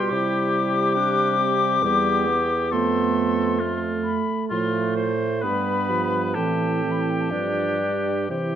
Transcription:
Already playing: french horn G3, clarinet F4, oboe G4, flute C6
0.10 bassoon C3, clarinet E4, flute D6
0.95 clarinet D4, oboe G4
1.39 clarinet C4
1.82 bassoon E2, french horn G3, clarinet B3, oboe G4
2.27 french horn B3
2.71 bassoon F2, clarinet A3, oboe A4, flute C6
3.59 french horn A3, oboe F4
4.03 flute B5
4.49 bassoon A2, french horn F3, clarinet A3, oboe F4, flute C6
4.96 oboe C5
5.42 bassoon G2, french horn G3, clarinet B3, oboe B4, flute B5
5.90 french horn F3
6.34 bassoon A2, french horn E3, clarinet C4, oboe G4, flute A5
6.84 french horn E3
6.91 flute B5
7.01 flute A5
7.10 flute G5
7.21 flute A5
7.31 bassoon G2, french horn F3, clarinet D4, flute D5
7.80 french horn G3
8.29 bassoon C3, french horn E3, clarinet E4, oboe G4, flute C5

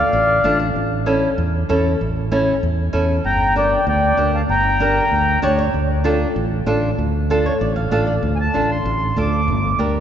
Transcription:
Already playing: accordion D5 F5
0.00 nylon-string guitar F5
0.13 fingered electric bass A1, nylon-string guitar D5
0.44 fingered electric bass A1, nylon-string guitar D4 F4 A4 E5
0.60 nylon-string guitar D5
0.76 fingered electric bass A1
1.06 nylon-string guitar C#4 E4 A4
1.38 fingered electric bass E2
1.69 fingered electric bass E2, nylon-string guitar C#4 E4 A4
2.01 fingered electric bass A1
2.32 nylon-string guitar C#4 E4 A4
2.63 fingered electric bass E2
2.93 fingered electric bass E2, nylon-string guitar C#4 E4 A4
3.24 fingered electric bass G1, accordion G5 A#5
3.56 nylon-string guitar D4 G4 A#4, accordion D5 G5
3.87 fingered electric bass D2, accordion D5 G5
4.17 fingered electric bass D2, nylon-string guitar D4 G4 A#4
4.34 accordion F5 A5
4.49 fingered electric bass G1, accordion G5 A#5
4.80 nylon-string guitar D4 G4 A#4
5.12 fingered electric bass D2
5.42 fingered electric bass D2, nylon-string guitar D4 G4 C#5 D5
5.58 nylon-string guitar C#5
5.74 fingered electric bass D2
6.04 nylon-string guitar D4 F4 A4
6.36 fingered electric bass A1
6.66 fingered electric bass A1, nylon-string guitar D4 F4 A4
6.98 fingered electric bass D2
7.30 nylon-string guitar D4 F4 A4
7.46 nylon-string guitar C#5
7.61 fingered electric bass A1, nylon-string guitar D5
7.76 nylon-string guitar F5
7.91 fingered electric bass A1, nylon-string guitar D4 F4 A4 F5
8.07 nylon-string guitar D5
8.23 fingered electric bass D2
8.36 accordion G#5
8.40 accordion A5
8.54 fingered electric bass A1, nylon-string guitar D4 F4 A4
8.71 accordion C6
8.85 fingered electric bass A1
9.16 fingered electric bass D2, nylon-string guitar D4 F4 A4, accordion D6
9.48 fingered electric bass G1
9.79 fingered electric bass D2, nylon-string guitar D4 G4 A#4

